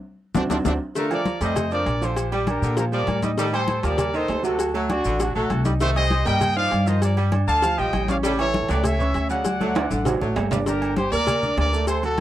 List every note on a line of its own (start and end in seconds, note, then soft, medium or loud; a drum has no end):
0.35 0.46 D2 loud
0.35 0.42 A3 medium
0.35 0.43 C4 medium
0.35 0.45 C4 loud
0.35 0.45 D4 loud
0.35 0.43 D4 loud
0.35 0.45 F#4 loud
0.35 low bongo loud
0.35 high conga loud
0.35 high timbale medium
0.35 maracas medium
0.50 0.61 D2 medium
0.50 0.57 A3 medium
0.50 0.57 C4 loud
0.50 0.60 C4 loud
0.50 0.57 D4 medium
0.50 0.60 D4 medium
0.50 0.60 F#4 medium
0.50 low bongo medium
0.50 high conga loud
0.50 high timbale loud
0.50 maracas loud
0.65 0.76 D2 medium
0.65 0.73 A3 loud
0.65 0.73 C4 medium
0.65 0.75 C4 loud
0.65 0.73 D4 loud
0.65 0.75 D4 medium
0.65 0.75 F#4 medium
0.65 low bongo loud
0.65 high conga medium
0.65 high timbale loud
0.65 maracas loud
0.95 1.08 D3 medium
0.95 1.20 A3 medium
0.95 1.08 D4 medium
0.95 1.10 F4 medium
0.95 1.11 A#4 loud
0.95 1.09 D5 medium
0.95 cowbell medium
0.95 high conga soft
0.95 low agogo medium
0.95 maracas medium
1.11 1.36 F3 medium
1.11 1.36 F4 medium
1.11 1.40 A#4 medium
1.11 1.40 D5 medium
1.11 1.36 F5 medium
1.11 high conga soft
1.11 low agogo loud
1.11 maracas soft
1.26 cowbell medium
1.26 high conga loud
1.26 low agogo medium
1.26 maracas soft
1.41 1.83 F2 medium
1.41 1.58 G3 medium
1.41 1.66 A3 medium
1.41 1.66 A4 medium
1.41 1.70 C5 medium
1.41 1.71 D#5 loud
1.41 1.66 A5 medium
1.41 cowbell medium
1.41 high conga soft
1.41 low agogo medium
1.41 maracas medium
1.56 cowbell loud
1.56 high conga soft
1.56 low conga medium
1.56 low agogo loud
1.56 maracas medium
1.71 1.88 F3 medium
1.71 1.96 D4 medium
1.71 2.00 A#4 medium
1.71 1.96 D5 medium
1.71 2.00 D5 loud
1.71 1.96 D6 medium
1.71 high conga soft
1.71 maracas soft
1.86 2.57 A#1 medium
1.86 cowbell medium
1.86 high conga soft
1.86 low agogo medium
1.86 maracas soft
2.01 2.17 D3 medium
2.01 2.26 F3 medium
2.01 2.26 F4 medium
2.01 2.33 G4 medium
2.01 2.33 C5 medium
2.01 2.27 F5 medium
2.01 high conga soft
2.01 maracas medium
2.16 cowbell medium
2.16 high conga soft
2.16 low agogo medium
2.16 maracas medium
2.32 2.44 G3 medium
2.32 2.48 G3 medium
2.32 2.44 G4 medium
2.32 2.45 G5 medium
2.32 high conga soft
2.32 low agogo medium
2.32 maracas soft
2.47 2.72 D4 medium
2.47 2.76 G4 medium
2.47 2.76 A#4 medium
2.47 2.72 D5 medium
2.47 2.72 D6 medium
2.47 cowbell medium
2.47 high conga loud
2.47 low agogo loud
2.47 maracas soft
2.62 3.04 A#2 medium
2.62 2.79 D3 medium
2.62 high conga soft
2.62 maracas medium
2.77 2.89 F3 medium
2.77 2.90 F4 medium
2.77 2.85 G4 medium
2.77 2.85 A#4 medium
2.77 2.90 F5 medium
2.77 cowbell loud
2.77 high conga soft
2.77 low agogo medium
2.77 maracas medium
2.92 3.09 F3 medium
2.92 3.17 G3 medium
2.92 3.17 G4 medium
2.92 3.22 A#4 medium
2.92 3.21 D5 loud
2.92 3.17 G5 medium
2.92 high conga soft
2.92 maracas soft
3.07 3.78 A2 medium
3.07 cowbell medium
3.07 high conga medium
3.07 low agogo loud
3.07 maracas soft
3.23 3.31 G3 medium
3.23 3.35 D#4 medium
3.23 3.35 D#5 medium
3.23 3.36 D#6 medium
3.23 cowbell medium
3.23 high conga medium
3.23 maracas medium
3.37 3.50 D#3 medium
3.37 3.62 G3 medium
3.37 3.50 D#4 medium
3.37 3.45 D#4 medium
3.37 3.45 A4 loud
3.37 3.50 D#5 medium
3.37 cowbell loud
3.37 high conga soft
3.37 low agogo medium
3.37 maracas loud
3.52 3.78 G3 medium
3.52 3.78 G4 medium
3.52 3.82 A4 medium
3.52 3.82 C5 loud
3.52 3.78 G5 medium
3.52 high conga soft
3.52 low agogo loud
3.52 maracas soft
3.68 cowbell medium
3.68 high conga loud
3.68 low agogo medium
3.68 maracas soft
3.83 4.26 D#2 medium
3.83 3.99 F3 medium
3.83 4.08 G3 medium
3.83 4.08 G4 medium
3.83 4.14 A#4 medium
3.83 4.14 D5 loud
3.83 4.08 A5 medium
3.83 cowbell medium
3.83 high conga soft
3.83 low agogo medium
3.83 maracas medium
3.98 cowbell loud
3.98 high conga soft
3.98 low conga medium
3.98 low agogo loud
3.98 maracas medium
4.14 4.30 D#3 medium
4.14 4.39 D#4 medium
4.14 4.44 A4 medium
4.14 4.45 C5 loud
4.14 4.39 D#5 medium
4.14 4.39 D#6 medium
4.14 high conga soft
4.14 maracas soft
4.28 4.99 D2 medium
4.28 cowbell medium
4.28 high conga soft
4.28 low timbale medium
4.28 low agogo medium
4.28 maracas soft
4.43 4.60 C3 medium
4.43 4.68 F#3 medium
4.43 4.69 F#4 medium
4.43 4.73 F#4 medium
4.43 4.73 A4 medium
4.43 4.69 F#5 medium
4.43 high conga soft
4.43 maracas medium
4.59 cowbell medium
4.59 high conga soft
4.59 low agogo medium
4.59 maracas loud
4.74 4.91 F#3 medium
4.74 4.87 A3 medium
4.74 4.87 A4 medium
4.74 4.87 A5 medium
4.74 high conga soft
4.74 low agogo medium
4.74 maracas soft
4.90 5.15 D4 medium
4.90 5.19 D4 medium
4.90 5.18 F#4 loud
4.90 5.15 D5 medium
4.90 5.15 D6 medium
4.90 cowbell medium
4.90 high conga loud
4.90 low agogo loud
4.90 maracas soft
5.05 5.33 A1 medium
5.05 5.21 D3 medium
5.05 high conga soft
5.05 maracas medium
5.20 5.33 F#3 medium
5.20 5.35 D4 medium
5.20 5.34 F#4 medium
5.20 5.33 F#4 medium
5.20 5.33 F#5 medium
5.20 cowbell loud
5.20 high conga soft
5.20 low agogo medium
5.20 maracas medium
5.35 5.49 A#1 medium
5.35 5.52 F#3 medium
5.35 5.60 A3 medium
5.35 5.64 F#4 medium
5.35 5.63 A4 loud
5.35 5.60 A4 medium
5.35 5.60 A5 medium
5.35 high conga soft
5.35 maracas soft
5.50 6.21 C2 medium
5.50 cowbell medium
5.50 high conga medium
5.50 low agogo loud
5.50 maracas soft
5.65 5.73 G3 medium
5.65 5.78 D#4 medium
5.65 5.78 D#5 medium
5.65 5.78 D#6 medium
5.65 cowbell medium
5.65 high conga medium
5.65 maracas medium
5.80 5.93 D#3 medium
5.80 6.05 A3 medium
5.80 5.93 D#4 medium
5.80 5.89 G4 medium
5.80 5.88 C5 loud
5.80 5.93 D#5 medium
5.80 cowbell medium
5.80 high conga soft
5.80 low agogo medium
5.80 maracas loud
5.95 6.20 G3 medium
5.95 6.21 G4 medium
5.95 6.25 C5 medium
5.95 6.24 D#5 loud
5.95 6.21 G5 medium
5.95 high conga soft
5.95 low agogo loud
5.95 maracas soft
6.10 cowbell medium
6.10 high conga loud
6.10 low agogo medium
6.10 maracas soft
6.25 6.69 G2 medium
6.25 6.42 G3 medium
6.25 6.51 A#3 medium
6.25 6.51 A#4 medium
6.25 6.55 D#5 medium
6.25 6.55 G5 loud
6.25 6.51 A#5 medium
6.25 cowbell medium
6.25 high conga soft
6.25 low agogo medium
6.25 maracas medium
6.41 cowbell loud
6.41 high conga soft
6.41 low conga loud
6.41 low agogo loud
6.41 maracas medium
6.56 6.73 F3 medium
6.56 6.81 D#4 medium
6.56 6.81 C5 medium
6.56 6.85 D5 medium
6.56 6.85 F5 loud
6.56 high conga soft
6.56 maracas soft
6.71 7.42 G2 medium
6.71 cowbell medium
6.71 high conga soft
6.71 low agogo medium
6.71 maracas soft
6.86 7.02 D#3 medium
6.86 7.12 F3 medium
6.86 7.12 F4 medium
6.86 7.03 C5 medium
6.86 7.02 D#5 medium
6.86 7.12 F5 medium
6.86 maracas medium
7.02 7.17 A#4 medium
7.02 7.17 D5 medium
7.02 cowbell medium
7.02 high conga soft
7.02 low agogo loud
7.02 maracas loud
7.17 7.29 G3 medium
7.17 7.33 G3 medium
7.17 7.30 G4 medium
7.17 7.30 G5 medium
7.17 high conga soft
7.17 low agogo medium
7.17 maracas soft
7.32 7.57 D4 medium
7.32 7.57 D5 medium
7.32 7.58 D6 medium
7.32 cowbell medium
7.32 high conga loud
7.32 low agogo loud
7.32 maracas soft
7.47 7.76 D2 medium
7.47 7.64 D3 medium
7.47 7.76 F5 loud
7.47 7.76 A5 loud
7.47 high conga soft
7.47 maracas medium
7.62 7.75 F3 medium
7.62 7.75 F4 medium
7.62 7.76 F5 medium
7.62 cowbell loud
7.62 high conga soft
7.62 low agogo medium
7.62 maracas medium
7.78 7.92 A#1 medium
7.78 7.94 F3 medium
7.78 8.03 G3 medium
7.78 8.03 G4 medium
7.78 8.09 D#5 medium
7.78 8.09 G5 loud
7.78 8.03 G5 medium
7.78 high conga soft
7.78 maracas soft
7.93 8.64 A1 medium
7.93 cowbell medium
7.93 high conga medium
7.93 low agogo loud
7.93 maracas soft
8.08 8.17 G3 medium
8.08 8.21 C#4 medium
8.08 8.21 C#5 medium
8.08 8.17 D5 medium
8.08 8.16 F5 medium
8.08 8.21 C#6 medium
8.08 cowbell medium
8.08 high conga medium
8.08 maracas medium
8.23 8.37 C#3 medium
8.23 8.47 G3 loud
8.23 8.37 C#4 medium
8.23 8.32 E4 medium
8.23 8.31 A4 medium
8.23 8.37 C#5 medium
8.23 cowbell medium
8.23 high conga soft
8.23 low agogo medium
8.23 maracas loud
8.39 8.64 E3 medium
8.39 8.64 E4 medium
8.39 8.68 A4 medium
8.39 8.68 C#5 loud
8.39 8.64 E5 medium
8.39 high conga soft
8.39 low agogo loud
8.39 maracas soft
8.54 cowbell medium
8.54 high conga loud
8.54 low agogo medium
8.54 maracas soft
8.69 9.11 C#2 loud
8.69 8.85 F#3 medium
8.69 8.95 A3 medium
8.69 8.95 A4 medium
8.69 8.85 B4 medium
8.69 8.85 D5 loud
8.69 8.95 G5 medium
8.69 cowbell medium
8.69 high conga soft
8.69 low agogo medium
8.69 maracas medium
8.84 9.31 C#5 medium
8.84 9.30 E5 loud
8.84 cowbell loud
8.84 high conga soft
8.84 low conga loud
8.84 low agogo loud
8.84 maracas loud
8.99 9.15 E3 medium
8.99 9.25 C#4 medium
8.99 9.25 C#5 medium
8.99 9.25 C#6 medium
8.99 high conga soft
8.99 low conga medium
8.99 maracas soft
9.14 9.85 D2 medium
9.14 cowbell medium
9.14 high conga soft
9.14 low agogo medium
9.14 maracas soft
9.29 9.45 C#3 medium
9.29 9.55 F#3 medium
9.29 9.55 F#4 medium
9.29 10.33 D5 medium
9.29 10.33 F#5 medium
9.29 9.56 F#5 medium
9.29 high conga soft
9.29 maracas medium
9.45 cowbell medium
9.45 high conga medium
9.45 low agogo medium
9.45 maracas loud
9.61 9.77 F#3 medium
9.61 9.73 A3 medium
9.61 9.73 A4 medium
9.61 9.74 A5 medium
9.61 high conga medium
9.61 low agogo medium
9.61 maracas soft
9.75 10.01 D4 medium
9.75 10.01 D5 medium
9.75 10.01 D6 medium
9.75 cowbell medium
9.75 high conga medium
9.75 high timbale loud
9.75 low agogo loud
9.75 maracas soft
9.91 10.19 A1 medium
9.91 10.07 D3 medium
9.91 high conga medium
9.91 maracas medium
10.05 10.19 F#3 medium
10.05 10.19 F#4 medium
10.05 10.19 F#5 medium
10.05 cowbell loud
10.05 low conga loud
10.05 high timbale medium
10.05 low agogo medium
10.05 maracas medium
10.21 10.35 A1 medium
10.21 10.38 F#3 medium
10.21 10.46 A3 medium
10.21 10.46 A4 medium
10.21 10.46 A5 medium
10.21 low conga medium
10.21 maracas soft
10.36 11.07 G1 medium
10.36 cowbell medium
10.36 low timbale loud
10.36 low agogo loud
10.36 maracas soft
10.51 10.59 G3 medium
10.51 10.64 D4 medium
10.51 10.64 D5 medium
10.51 10.64 D6 medium
10.51 cowbell medium
10.51 low conga loud
10.51 low timbale loud
10.51 maracas medium
10.66 10.92 D3 medium
10.66 10.92 D4 medium
10.66 10.95 G4 medium
10.66 10.95 A#4 loud
10.66 10.92 D5 medium
10.66 cowbell loud
10.66 high conga soft
10.66 low agogo medium
10.66 maracas loud
10.82 high conga soft
10.82 low agogo loud
10.82 maracas soft
10.96 11.09 G3 medium
10.96 11.10 G4 medium
10.96 11.12 G4 medium
10.96 11.11 C5 loud
10.96 11.10 G5 medium
10.96 cowbell medium
10.96 high conga loud
10.96 low agogo medium
10.96 maracas soft
11.12 11.54 D2 medium
11.12 11.37 A#3 medium
11.12 11.37 A#4 medium
11.12 11.55 A#4 loud
11.12 11.54 D5 loud
11.12 11.37 A#5 medium
11.12 cowbell medium
11.12 high conga soft
11.12 low agogo medium
11.12 maracas medium
11.27 cowbell loud
11.27 high conga soft
11.27 low conga medium
11.27 low agogo loud
11.27 maracas medium
11.43 11.68 D4 medium
11.43 11.68 D5 medium
11.43 11.68 D6 medium
11.43 high conga soft
11.43 low conga medium
11.43 maracas soft
11.57 12.20 D2 medium
11.57 11.87 A#4 medium
11.57 11.86 D5 loud
11.57 cowbell medium
11.57 high conga soft
11.57 low timbale medium
11.57 low agogo loud
11.57 maracas soft
11.73 11.98 A3 medium
11.73 11.98 A4 medium
11.73 11.98 A5 medium
11.73 high conga soft
11.73 maracas medium
11.87 12.03 A4 medium
11.87 12.02 C5 loud
11.87 cowbell loud
11.87 high conga soft
11.87 low agogo loud
11.87 maracas medium
12.03 12.20 F#3 medium
12.03 12.20 F#4 medium
12.03 12.20 A4 loud
12.03 12.20 F#5 medium
12.03 high conga soft
12.03 low agogo medium
12.03 maracas soft